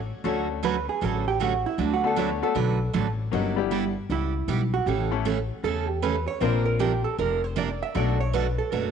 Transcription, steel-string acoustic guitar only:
0.24 D3 F#3 A3 C#4 F#4
0.63 D3 F#3 A3 C#4 F#4
1.01 D3 F#3 A3 C#4 F#4
1.40 D3 F#3 A3 C#4 F#4
1.78 D3 F#3 A3 D4 F#4 B4
2.16 D3 F#3 A3 D4 F#4 B4
2.55 D3 F#3 A3 D4 F#4 B4
2.93 D3 F#3 A3 D4 F#4 B4
3.33 G3 B3 E4 G4
3.71 G3 B3 E4 G4
4.10 G3 B3 E4 G4
4.48 G3 B3 E4 G4
4.87 C#3 E3 A3 C#4 A4
5.25 C#3 E3 A3 C#4 A4
5.64 C#3 E3 A3 C#4 A4
6.02 C#3 E3 A3 C#4 A4
6.41 C3 F3 A#3 D4 A#4
6.79 C3 F3 A#3 D4 A#4
7.18 C3 F3 A#3 D4 A#4
7.56 C3 F3 A#3 D4 A#4
7.94 B2 F#3 A3 D4 F#4
8.33 B2 F#3 A3 D4 F#4
8.72 B2 F#3 A3 D4 F#4

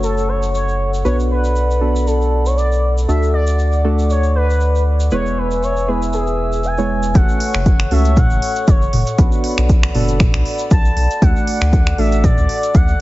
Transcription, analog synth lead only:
0.03 A4
0.29 C#5
0.54 C#5
1.05 C#5
1.30 B4
2.06 A4
2.46 C#5
2.57 D5
3.08 E5
3.34 D5
4.10 C#5
4.35 B4
5.13 C#5
5.38 B4
5.63 C#5
5.88 B4
6.13 G#4
6.65 G#5
7.15 F#5
7.93 E5
8.18 F#5
8.68 C#5
10.72 A5
11.23 F#5
11.98 E5
12.24 D5
12.75 F#5

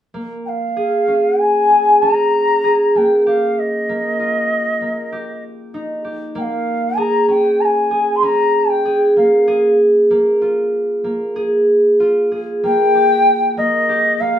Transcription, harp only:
0.14 A#3
0.76 G#4
1.08 C#4
1.70 G#4
2.02 C#4
2.64 G#4
2.95 A#3
3.27 G4
3.89 A#3
4.20 F4
4.81 A#3
5.12 G4
5.74 D#4
6.05 G4
6.35 A#3
6.97 G#4
7.28 C#4
7.91 G#4
8.22 C#4
8.85 G#4
9.17 A#3
9.48 G#4
10.11 A#3
10.42 F4
11.04 A#3
11.36 G#4
12.00 F4
12.32 G#4
12.64 A#3
12.95 G4
13.57 A#3
13.89 G4
14.21 A#3

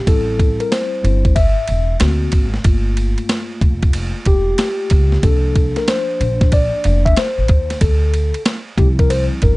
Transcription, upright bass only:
0.07 A1
1.04 G1
1.69 E1
2.01 D2
2.33 G#1
2.65 G1
3.62 F1
4.27 E1
4.91 C#2
5.23 C2
6.20 A#1
6.85 F1
7.38 A1
7.50 D#2
7.82 D2
8.78 C2
9.43 G1

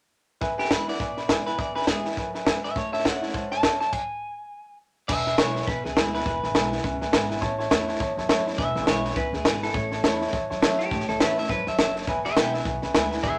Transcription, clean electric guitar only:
0.59 G4
0.72 B4
0.89 D5
1.46 B4
1.59 D5
1.76 B4
1.88 G#4
2.64 E5
2.77 C#5
2.93 E5
3.06 F#5
3.52 A5
3.80 A5
3.92 G#5
5.08 E5
5.39 C#5
5.67 B4
5.84 G#4
6.15 B4
8.58 E5
8.88 C#5
9.16 B4
9.34 G#4
9.63 A4
10.79 G4
11.09 A4
11.21 B4
11.39 E5
11.50 B4
11.68 E5
11.79 E5
12.25 G#4 E5
12.37 E5 G5
12.54 E5
13.23 G#4 E5

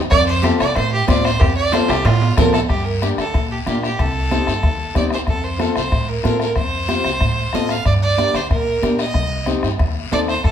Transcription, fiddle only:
0.10 D5
0.27 C5
0.43 G4
0.59 D5
0.76 C5
0.93 G4
1.08 D5
1.24 C5
1.40 G4
1.56 D5
1.73 C5
1.89 G4
2.06 F4
2.37 A#4
2.53 A4
2.69 G4
2.85 A#4
3.02 G4
3.19 A4
3.52 G4
3.66 G4
3.84 G4
4.00 A4
4.97 D5
5.14 C5
5.29 A4
5.44 C5
5.61 A4
5.77 C5
6.08 A#4
6.24 A#4
6.41 A#4
6.56 C5
7.55 D#5
7.71 F5
7.86 D5
8.02 D5
8.36 C5
8.51 A#4
9.00 D#5
10.13 D5
10.29 C5
10.44 A4

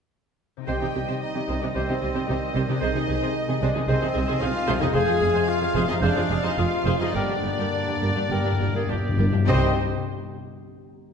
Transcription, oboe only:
0.67 C5
1.76 C5
2.81 C5
3.88 C5
4.95 C5
6.02 C5
7.16 A#4
7.74 D5
8.32 A#4
8.76 G#4
8.89 G4
9.49 D#5

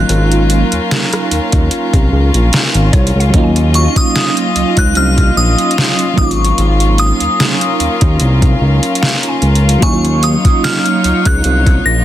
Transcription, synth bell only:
Already playing: F#6
3.75 C#6
3.97 D#6
4.78 F#6
4.97 F6
5.37 D#6
6.18 C#6
6.99 D#6
9.83 C#6
10.24 D#6
10.64 F6
11.27 F#6
11.86 A#6

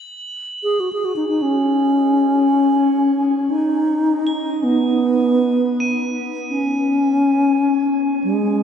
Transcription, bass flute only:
0.63 G#4
0.80 F#4
0.93 G#4
1.05 F#4
1.16 D#4
1.28 D#4
1.42 C#4
3.50 D#4
4.63 B3
6.49 C#4
8.24 G#3

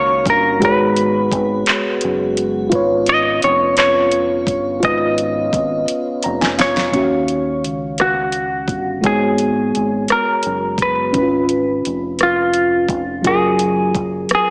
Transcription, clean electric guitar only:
Already playing: C#5
0.30 A#4
0.65 B4
3.09 D#5
3.44 C#5
3.79 C#5
4.85 D#5
6.61 C#5
8.01 F#4
9.06 G#4
10.12 A#4
10.82 B4
12.23 F4
13.27 G#4
14.35 G#4

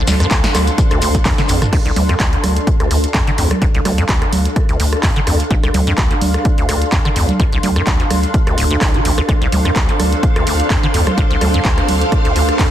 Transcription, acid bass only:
0.07 D2
0.20 F2
0.44 D2
0.91 D2
1.02 D2
1.25 F2
1.38 D3
1.49 F2
1.73 D2
1.85 C2
1.96 D2
2.09 F2
2.33 D2
2.80 D2
2.91 D2
3.14 F2
3.27 D3
3.38 F2
3.62 D2
3.75 C2
3.85 D2
3.98 F2
4.22 D2
4.69 D2
4.80 D2
5.03 F2
5.16 D3
5.27 F2
5.51 D2
5.63 C2
5.74 D2
5.87 F2
6.11 D2
6.58 D2
6.69 D2
6.92 F2
7.05 D3
7.16 F2
7.40 D2
7.53 C2
7.63 D2
7.76 F2
8.00 D2
8.47 D2
8.58 D1
8.71 D2
8.81 C2
8.94 D3
9.05 D2
9.18 D2
9.29 D2
9.42 C2
9.52 D2
9.65 F2
9.89 D2
10.36 D2
10.47 D2
10.70 F2
10.83 D3
10.94 F2
11.18 D2
11.30 C2
11.41 D2
11.54 F2
11.78 D2
12.25 D2
12.36 D2
12.59 F2

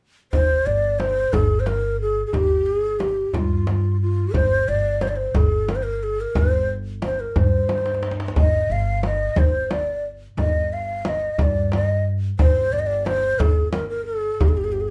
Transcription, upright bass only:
0.33 G1
0.67 G1
1.33 G1
2.34 G1
3.34 G2
4.35 G1
4.68 G1
5.36 G1
6.36 G1
7.36 G2
8.36 G1
8.70 G1
9.36 G1
10.37 G1
11.39 G2
12.40 G1
12.73 G1
13.40 G1
14.40 G1

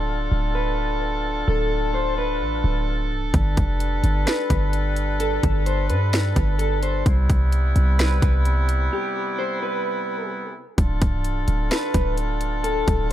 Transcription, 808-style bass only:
Already playing: D1
0.32 D1
1.48 D1
2.41 A1
2.64 D1
3.11 C1
3.22 D1
3.34 G1
3.57 F1
4.04 G1
4.50 G1
5.43 G1
5.90 G2
6.36 G1
7.06 C2
7.30 C2
7.76 C2
8.22 C2
10.78 D1
11.02 C1
11.48 D1
11.94 D1
12.88 D1

